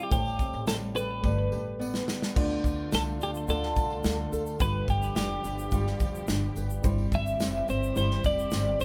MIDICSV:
0, 0, Header, 1, 7, 480
1, 0, Start_track
1, 0, Tempo, 560695
1, 99, Time_signature, 4, 2, 24, 8
1, 7575, End_track
2, 0, Start_track
2, 0, Title_t, "Clean electric guitar"
2, 0, Program_c, 0, 27
2, 27, Note_on_c, 0, 67, 67
2, 95, Note_off_c, 0, 67, 0
2, 105, Note_on_c, 0, 67, 85
2, 578, Note_off_c, 0, 67, 0
2, 581, Note_on_c, 0, 69, 91
2, 646, Note_off_c, 0, 69, 0
2, 821, Note_on_c, 0, 71, 85
2, 1746, Note_off_c, 0, 71, 0
2, 2523, Note_on_c, 0, 69, 83
2, 2585, Note_off_c, 0, 69, 0
2, 2768, Note_on_c, 0, 67, 72
2, 2829, Note_off_c, 0, 67, 0
2, 2997, Note_on_c, 0, 69, 94
2, 3948, Note_off_c, 0, 69, 0
2, 3952, Note_on_c, 0, 71, 96
2, 4192, Note_off_c, 0, 71, 0
2, 4195, Note_on_c, 0, 67, 90
2, 4412, Note_off_c, 0, 67, 0
2, 4423, Note_on_c, 0, 67, 74
2, 5346, Note_off_c, 0, 67, 0
2, 6121, Note_on_c, 0, 76, 110
2, 6588, Note_off_c, 0, 76, 0
2, 6592, Note_on_c, 0, 72, 88
2, 6817, Note_off_c, 0, 72, 0
2, 6827, Note_on_c, 0, 72, 98
2, 7046, Note_off_c, 0, 72, 0
2, 7071, Note_on_c, 0, 74, 100
2, 7541, Note_off_c, 0, 74, 0
2, 7544, Note_on_c, 0, 72, 93
2, 7575, Note_off_c, 0, 72, 0
2, 7575, End_track
3, 0, Start_track
3, 0, Title_t, "Felt piano"
3, 0, Program_c, 1, 0
3, 0, Control_c, 1, 64, 127
3, 0, Note_on_c, 1, 55, 69
3, 0, Note_on_c, 1, 63, 51
3, 0, Note_on_c, 1, 64, 62
3, 0, Note_on_c, 1, 72, 77
3, 84, Note_on_c, 1, 57, 74
3, 95, Note_on_c, 1, 67, 65
3, 102, Note_off_c, 1, 72, 0
3, 102, Note_on_c, 1, 72, 79
3, 112, Control_c, 1, 64, 0
3, 116, Note_off_c, 1, 64, 0
3, 118, Note_off_c, 1, 63, 0
3, 119, Note_off_c, 1, 55, 0
3, 271, Control_c, 1, 64, 127
3, 765, Note_off_c, 1, 57, 0
3, 771, Note_off_c, 1, 67, 0
3, 774, Note_off_c, 1, 72, 0
3, 1052, Note_on_c, 1, 57, 73
3, 1061, Note_on_c, 1, 67, 69
3, 1069, Note_on_c, 1, 71, 78
3, 1071, Control_c, 1, 64, 0
3, 1217, Control_c, 1, 64, 127
3, 1224, Note_off_c, 1, 57, 0
3, 1229, Note_off_c, 1, 67, 0
3, 1232, Note_off_c, 1, 71, 0
3, 1289, Note_on_c, 1, 57, 64
3, 1298, Note_on_c, 1, 67, 64
3, 1305, Note_on_c, 1, 71, 75
3, 1537, Note_on_c, 1, 74, 74
3, 1799, Note_off_c, 1, 57, 0
3, 1804, Note_off_c, 1, 67, 0
3, 1807, Note_off_c, 1, 71, 0
3, 1985, Note_off_c, 1, 74, 0
3, 2015, Note_on_c, 1, 57, 81
3, 2020, Note_on_c, 1, 65, 77
3, 2029, Control_c, 1, 64, 0
3, 2032, Note_on_c, 1, 74, 92
3, 2157, Control_c, 1, 64, 127
3, 2690, Note_off_c, 1, 57, 0
3, 2693, Note_off_c, 1, 65, 0
3, 2699, Note_off_c, 1, 74, 0
3, 2973, Note_on_c, 1, 57, 75
3, 2983, Note_on_c, 1, 65, 64
3, 2990, Note_on_c, 1, 74, 74
3, 3649, Note_off_c, 1, 57, 0
3, 3654, Note_off_c, 1, 65, 0
3, 3658, Note_off_c, 1, 74, 0
3, 3930, Note_on_c, 1, 55, 75
3, 3940, Note_on_c, 1, 65, 67
3, 3947, Note_on_c, 1, 71, 75
3, 3950, Control_c, 1, 64, 0
3, 4094, Control_c, 1, 64, 127
3, 4608, Note_off_c, 1, 55, 0
3, 4612, Note_off_c, 1, 65, 0
3, 4616, Note_off_c, 1, 71, 0
3, 4886, Note_on_c, 1, 55, 69
3, 4893, Note_on_c, 1, 65, 68
3, 4903, Note_on_c, 1, 67, 82
3, 5566, Note_off_c, 1, 55, 0
3, 5569, Note_off_c, 1, 65, 0
3, 5574, Note_off_c, 1, 67, 0
3, 5842, Note_on_c, 1, 55, 86
3, 5853, Note_on_c, 1, 64, 76
3, 5859, Note_on_c, 1, 72, 90
3, 5870, Control_c, 1, 64, 0
3, 5999, Control_c, 1, 64, 127
3, 6524, Note_off_c, 1, 55, 0
3, 6529, Note_off_c, 1, 64, 0
3, 6532, Note_off_c, 1, 72, 0
3, 6802, Note_on_c, 1, 55, 72
3, 6809, Note_on_c, 1, 64, 67
3, 6817, Note_on_c, 1, 72, 82
3, 7484, Note_off_c, 1, 55, 0
3, 7487, Note_off_c, 1, 64, 0
3, 7491, Note_off_c, 1, 72, 0
3, 7575, End_track
4, 0, Start_track
4, 0, Title_t, "Nylon-string guitar"
4, 0, Program_c, 2, 24
4, 0, Note_on_c, 2, 55, 79
4, 0, Note_on_c, 2, 60, 68
4, 0, Note_on_c, 2, 64, 63
4, 0, Note_on_c, 2, 72, 66
4, 104, Note_on_c, 2, 45, 87
4, 147, Note_off_c, 2, 60, 0
4, 149, Note_off_c, 2, 72, 0
4, 150, Note_off_c, 2, 64, 0
4, 341, Note_on_c, 2, 60, 61
4, 575, Note_off_c, 2, 55, 0
4, 578, Note_on_c, 2, 55, 71
4, 818, Note_on_c, 2, 69, 65
4, 1052, Note_off_c, 2, 55, 0
4, 1062, Note_on_c, 2, 55, 83
4, 1108, Note_off_c, 2, 60, 0
4, 1110, Note_off_c, 2, 45, 0
4, 1536, Note_on_c, 2, 59, 68
4, 1562, Note_off_c, 2, 69, 0
4, 1776, Note_on_c, 2, 67, 64
4, 2015, Note_off_c, 2, 55, 0
4, 2019, Note_on_c, 2, 50, 85
4, 2066, Note_off_c, 2, 59, 0
4, 2066, Note_off_c, 2, 67, 0
4, 2499, Note_on_c, 2, 57, 71
4, 2732, Note_on_c, 2, 62, 57
4, 2973, Note_off_c, 2, 50, 0
4, 2976, Note_on_c, 2, 50, 79
4, 3452, Note_off_c, 2, 57, 0
4, 3463, Note_on_c, 2, 57, 71
4, 3702, Note_on_c, 2, 69, 68
4, 3928, Note_off_c, 2, 57, 0
4, 3932, Note_on_c, 2, 55, 83
4, 3988, Note_off_c, 2, 69, 0
4, 4422, Note_off_c, 2, 62, 0
4, 4426, Note_on_c, 2, 62, 73
4, 4653, Note_off_c, 2, 62, 0
4, 4664, Note_on_c, 2, 62, 57
4, 4896, Note_off_c, 2, 55, 0
4, 4900, Note_on_c, 2, 55, 83
4, 5370, Note_off_c, 2, 62, 0
4, 5381, Note_on_c, 2, 62, 67
4, 5622, Note_on_c, 2, 71, 69
4, 5855, Note_off_c, 2, 55, 0
4, 5858, Note_on_c, 2, 55, 85
4, 5908, Note_off_c, 2, 62, 0
4, 5908, Note_off_c, 2, 71, 0
4, 5972, Note_off_c, 2, 50, 0
4, 6341, Note_on_c, 2, 60, 73
4, 6578, Note_off_c, 2, 60, 0
4, 6581, Note_on_c, 2, 60, 59
4, 6809, Note_off_c, 2, 55, 0
4, 6812, Note_on_c, 2, 55, 90
4, 7289, Note_off_c, 2, 60, 0
4, 7293, Note_on_c, 2, 60, 70
4, 7531, Note_on_c, 2, 72, 72
4, 7575, Note_off_c, 2, 55, 0
4, 7575, Note_off_c, 2, 60, 0
4, 7575, Note_off_c, 2, 72, 0
4, 7575, End_track
5, 0, Start_track
5, 0, Title_t, "String section"
5, 0, Program_c, 3, 48
5, 2018, Note_on_c, 3, 57, 67
5, 2020, Note_on_c, 3, 50, 77
5, 2021, Note_on_c, 3, 65, 79
5, 3919, Note_off_c, 3, 57, 0
5, 3920, Note_off_c, 3, 50, 0
5, 3921, Note_off_c, 3, 65, 0
5, 3946, Note_on_c, 3, 53, 74
5, 3946, Note_on_c, 3, 59, 72
5, 3946, Note_on_c, 3, 67, 86
5, 5843, Note_off_c, 3, 53, 0
5, 5843, Note_off_c, 3, 59, 0
5, 5843, Note_off_c, 3, 67, 0
5, 5858, Note_on_c, 3, 52, 75
5, 5858, Note_on_c, 3, 67, 83
5, 5859, Note_on_c, 3, 60, 69
5, 7575, Note_off_c, 3, 52, 0
5, 7575, Note_off_c, 3, 60, 0
5, 7575, Note_off_c, 3, 67, 0
5, 7575, End_track
6, 0, Start_track
6, 0, Title_t, "Upright bass"
6, 0, Program_c, 4, 32
6, 100, Note_on_c, 4, 33, 90
6, 296, Note_off_c, 4, 33, 0
6, 459, Note_on_c, 4, 33, 93
6, 1029, Note_off_c, 4, 33, 0
6, 1059, Note_on_c, 4, 31, 110
6, 1256, Note_off_c, 4, 31, 0
6, 1304, Note_on_c, 4, 33, 90
6, 1696, Note_off_c, 4, 33, 0
6, 2024, Note_on_c, 4, 38, 100
6, 2219, Note_off_c, 4, 38, 0
6, 2261, Note_on_c, 4, 38, 89
6, 2457, Note_off_c, 4, 38, 0
6, 2506, Note_on_c, 4, 36, 84
6, 2742, Note_off_c, 4, 36, 0
6, 2742, Note_on_c, 4, 38, 86
6, 2938, Note_off_c, 4, 38, 0
6, 2979, Note_on_c, 4, 38, 98
6, 3176, Note_off_c, 4, 38, 0
6, 3221, Note_on_c, 4, 36, 91
6, 3417, Note_off_c, 4, 36, 0
6, 3461, Note_on_c, 4, 38, 92
6, 3657, Note_off_c, 4, 38, 0
6, 3703, Note_on_c, 4, 38, 78
6, 3898, Note_off_c, 4, 38, 0
6, 3941, Note_on_c, 4, 31, 105
6, 4137, Note_off_c, 4, 31, 0
6, 4176, Note_on_c, 4, 31, 96
6, 4374, Note_off_c, 4, 31, 0
6, 4418, Note_on_c, 4, 29, 82
6, 4615, Note_off_c, 4, 29, 0
6, 4658, Note_on_c, 4, 31, 94
6, 4855, Note_off_c, 4, 31, 0
6, 4897, Note_on_c, 4, 31, 91
6, 5095, Note_off_c, 4, 31, 0
6, 5141, Note_on_c, 4, 29, 86
6, 5337, Note_off_c, 4, 29, 0
6, 5377, Note_on_c, 4, 31, 86
6, 5575, Note_off_c, 4, 31, 0
6, 5617, Note_on_c, 4, 31, 83
6, 5814, Note_off_c, 4, 31, 0
6, 5856, Note_on_c, 4, 31, 100
6, 6054, Note_off_c, 4, 31, 0
6, 6095, Note_on_c, 4, 31, 94
6, 6294, Note_off_c, 4, 31, 0
6, 6335, Note_on_c, 4, 29, 93
6, 6533, Note_off_c, 4, 29, 0
6, 6580, Note_on_c, 4, 31, 89
6, 6776, Note_off_c, 4, 31, 0
6, 6818, Note_on_c, 4, 31, 95
6, 7015, Note_off_c, 4, 31, 0
6, 7058, Note_on_c, 4, 29, 92
6, 7255, Note_off_c, 4, 29, 0
6, 7293, Note_on_c, 4, 31, 101
6, 7492, Note_off_c, 4, 31, 0
6, 7534, Note_on_c, 4, 31, 83
6, 7575, Note_off_c, 4, 31, 0
6, 7575, End_track
7, 0, Start_track
7, 0, Title_t, "Drums"
7, 99, Note_on_c, 9, 36, 117
7, 100, Note_on_c, 9, 82, 90
7, 101, Note_on_c, 9, 54, 45
7, 184, Note_off_c, 9, 36, 0
7, 185, Note_off_c, 9, 82, 0
7, 186, Note_off_c, 9, 54, 0
7, 215, Note_on_c, 9, 54, 35
7, 301, Note_off_c, 9, 54, 0
7, 336, Note_on_c, 9, 36, 84
7, 337, Note_on_c, 9, 54, 43
7, 341, Note_on_c, 9, 82, 43
7, 422, Note_off_c, 9, 36, 0
7, 422, Note_off_c, 9, 54, 0
7, 427, Note_off_c, 9, 82, 0
7, 456, Note_on_c, 9, 54, 31
7, 541, Note_off_c, 9, 54, 0
7, 573, Note_on_c, 9, 54, 84
7, 578, Note_on_c, 9, 38, 118
7, 578, Note_on_c, 9, 82, 72
7, 659, Note_off_c, 9, 54, 0
7, 663, Note_off_c, 9, 38, 0
7, 664, Note_off_c, 9, 82, 0
7, 812, Note_on_c, 9, 54, 47
7, 827, Note_on_c, 9, 82, 46
7, 898, Note_off_c, 9, 54, 0
7, 913, Note_off_c, 9, 82, 0
7, 1059, Note_on_c, 9, 36, 84
7, 1059, Note_on_c, 9, 54, 47
7, 1144, Note_off_c, 9, 36, 0
7, 1144, Note_off_c, 9, 54, 0
7, 1301, Note_on_c, 9, 54, 51
7, 1386, Note_off_c, 9, 54, 0
7, 1552, Note_on_c, 9, 54, 75
7, 1638, Note_off_c, 9, 54, 0
7, 1660, Note_on_c, 9, 38, 80
7, 1746, Note_off_c, 9, 38, 0
7, 1781, Note_on_c, 9, 38, 99
7, 1782, Note_on_c, 9, 54, 52
7, 1866, Note_off_c, 9, 38, 0
7, 1868, Note_off_c, 9, 54, 0
7, 1904, Note_on_c, 9, 38, 85
7, 1906, Note_on_c, 9, 54, 32
7, 1989, Note_off_c, 9, 38, 0
7, 1991, Note_off_c, 9, 54, 0
7, 2024, Note_on_c, 9, 36, 123
7, 2024, Note_on_c, 9, 49, 94
7, 2029, Note_on_c, 9, 54, 44
7, 2109, Note_off_c, 9, 36, 0
7, 2110, Note_off_c, 9, 49, 0
7, 2115, Note_off_c, 9, 54, 0
7, 2261, Note_on_c, 9, 36, 81
7, 2267, Note_on_c, 9, 54, 41
7, 2270, Note_on_c, 9, 82, 44
7, 2347, Note_off_c, 9, 36, 0
7, 2353, Note_off_c, 9, 54, 0
7, 2356, Note_off_c, 9, 82, 0
7, 2504, Note_on_c, 9, 38, 111
7, 2504, Note_on_c, 9, 82, 71
7, 2507, Note_on_c, 9, 54, 84
7, 2589, Note_off_c, 9, 38, 0
7, 2589, Note_off_c, 9, 82, 0
7, 2592, Note_off_c, 9, 54, 0
7, 2748, Note_on_c, 9, 54, 52
7, 2750, Note_on_c, 9, 82, 52
7, 2833, Note_off_c, 9, 54, 0
7, 2835, Note_off_c, 9, 82, 0
7, 2867, Note_on_c, 9, 82, 50
7, 2953, Note_off_c, 9, 82, 0
7, 2980, Note_on_c, 9, 82, 75
7, 2990, Note_on_c, 9, 54, 43
7, 3065, Note_off_c, 9, 82, 0
7, 3075, Note_off_c, 9, 54, 0
7, 3106, Note_on_c, 9, 38, 30
7, 3191, Note_off_c, 9, 38, 0
7, 3221, Note_on_c, 9, 82, 47
7, 3223, Note_on_c, 9, 36, 88
7, 3226, Note_on_c, 9, 54, 49
7, 3307, Note_off_c, 9, 82, 0
7, 3309, Note_off_c, 9, 36, 0
7, 3312, Note_off_c, 9, 54, 0
7, 3339, Note_on_c, 9, 54, 28
7, 3425, Note_off_c, 9, 54, 0
7, 3457, Note_on_c, 9, 82, 73
7, 3462, Note_on_c, 9, 38, 108
7, 3474, Note_on_c, 9, 54, 76
7, 3543, Note_off_c, 9, 82, 0
7, 3548, Note_off_c, 9, 38, 0
7, 3560, Note_off_c, 9, 54, 0
7, 3706, Note_on_c, 9, 54, 51
7, 3706, Note_on_c, 9, 82, 53
7, 3791, Note_off_c, 9, 54, 0
7, 3791, Note_off_c, 9, 82, 0
7, 3820, Note_on_c, 9, 82, 50
7, 3828, Note_on_c, 9, 54, 30
7, 3905, Note_off_c, 9, 82, 0
7, 3914, Note_off_c, 9, 54, 0
7, 3941, Note_on_c, 9, 36, 122
7, 3942, Note_on_c, 9, 82, 88
7, 3947, Note_on_c, 9, 54, 46
7, 4026, Note_off_c, 9, 36, 0
7, 4027, Note_off_c, 9, 82, 0
7, 4032, Note_off_c, 9, 54, 0
7, 4178, Note_on_c, 9, 36, 89
7, 4180, Note_on_c, 9, 54, 44
7, 4185, Note_on_c, 9, 82, 41
7, 4263, Note_off_c, 9, 36, 0
7, 4266, Note_off_c, 9, 54, 0
7, 4270, Note_off_c, 9, 82, 0
7, 4300, Note_on_c, 9, 54, 31
7, 4302, Note_on_c, 9, 82, 47
7, 4385, Note_off_c, 9, 54, 0
7, 4388, Note_off_c, 9, 82, 0
7, 4419, Note_on_c, 9, 38, 110
7, 4419, Note_on_c, 9, 82, 73
7, 4422, Note_on_c, 9, 54, 83
7, 4505, Note_off_c, 9, 38, 0
7, 4505, Note_off_c, 9, 82, 0
7, 4507, Note_off_c, 9, 54, 0
7, 4658, Note_on_c, 9, 54, 50
7, 4661, Note_on_c, 9, 82, 51
7, 4744, Note_off_c, 9, 54, 0
7, 4746, Note_off_c, 9, 82, 0
7, 4784, Note_on_c, 9, 82, 47
7, 4869, Note_off_c, 9, 82, 0
7, 4893, Note_on_c, 9, 82, 70
7, 4897, Note_on_c, 9, 36, 81
7, 4899, Note_on_c, 9, 54, 46
7, 4979, Note_off_c, 9, 82, 0
7, 4982, Note_off_c, 9, 36, 0
7, 4984, Note_off_c, 9, 54, 0
7, 5023, Note_on_c, 9, 38, 31
7, 5108, Note_off_c, 9, 38, 0
7, 5133, Note_on_c, 9, 54, 47
7, 5138, Note_on_c, 9, 82, 50
7, 5139, Note_on_c, 9, 36, 90
7, 5219, Note_off_c, 9, 54, 0
7, 5223, Note_off_c, 9, 82, 0
7, 5225, Note_off_c, 9, 36, 0
7, 5266, Note_on_c, 9, 82, 44
7, 5352, Note_off_c, 9, 82, 0
7, 5373, Note_on_c, 9, 82, 66
7, 5378, Note_on_c, 9, 38, 103
7, 5382, Note_on_c, 9, 54, 80
7, 5459, Note_off_c, 9, 82, 0
7, 5464, Note_off_c, 9, 38, 0
7, 5468, Note_off_c, 9, 54, 0
7, 5614, Note_on_c, 9, 54, 50
7, 5619, Note_on_c, 9, 82, 57
7, 5700, Note_off_c, 9, 54, 0
7, 5705, Note_off_c, 9, 82, 0
7, 5738, Note_on_c, 9, 82, 49
7, 5823, Note_off_c, 9, 82, 0
7, 5857, Note_on_c, 9, 36, 118
7, 5857, Note_on_c, 9, 82, 91
7, 5860, Note_on_c, 9, 54, 47
7, 5943, Note_off_c, 9, 36, 0
7, 5943, Note_off_c, 9, 82, 0
7, 5945, Note_off_c, 9, 54, 0
7, 5977, Note_on_c, 9, 54, 35
7, 6063, Note_off_c, 9, 54, 0
7, 6095, Note_on_c, 9, 36, 82
7, 6096, Note_on_c, 9, 54, 45
7, 6101, Note_on_c, 9, 82, 44
7, 6181, Note_off_c, 9, 36, 0
7, 6181, Note_off_c, 9, 54, 0
7, 6186, Note_off_c, 9, 82, 0
7, 6215, Note_on_c, 9, 54, 31
7, 6220, Note_on_c, 9, 82, 49
7, 6300, Note_off_c, 9, 54, 0
7, 6305, Note_off_c, 9, 82, 0
7, 6334, Note_on_c, 9, 54, 84
7, 6339, Note_on_c, 9, 38, 120
7, 6339, Note_on_c, 9, 82, 73
7, 6420, Note_off_c, 9, 54, 0
7, 6425, Note_off_c, 9, 38, 0
7, 6425, Note_off_c, 9, 82, 0
7, 6573, Note_on_c, 9, 54, 49
7, 6581, Note_on_c, 9, 82, 48
7, 6658, Note_off_c, 9, 54, 0
7, 6667, Note_off_c, 9, 82, 0
7, 6706, Note_on_c, 9, 82, 49
7, 6791, Note_off_c, 9, 82, 0
7, 6816, Note_on_c, 9, 82, 73
7, 6818, Note_on_c, 9, 54, 44
7, 6902, Note_off_c, 9, 82, 0
7, 6904, Note_off_c, 9, 54, 0
7, 6940, Note_on_c, 9, 38, 30
7, 7026, Note_off_c, 9, 38, 0
7, 7055, Note_on_c, 9, 82, 51
7, 7056, Note_on_c, 9, 54, 50
7, 7058, Note_on_c, 9, 36, 86
7, 7141, Note_off_c, 9, 82, 0
7, 7142, Note_off_c, 9, 54, 0
7, 7143, Note_off_c, 9, 36, 0
7, 7183, Note_on_c, 9, 82, 46
7, 7268, Note_off_c, 9, 82, 0
7, 7287, Note_on_c, 9, 82, 69
7, 7292, Note_on_c, 9, 38, 100
7, 7305, Note_on_c, 9, 54, 84
7, 7372, Note_off_c, 9, 82, 0
7, 7377, Note_off_c, 9, 38, 0
7, 7391, Note_off_c, 9, 54, 0
7, 7535, Note_on_c, 9, 54, 52
7, 7538, Note_on_c, 9, 82, 56
7, 7575, Note_off_c, 9, 54, 0
7, 7575, Note_off_c, 9, 82, 0
7, 7575, End_track
0, 0, End_of_file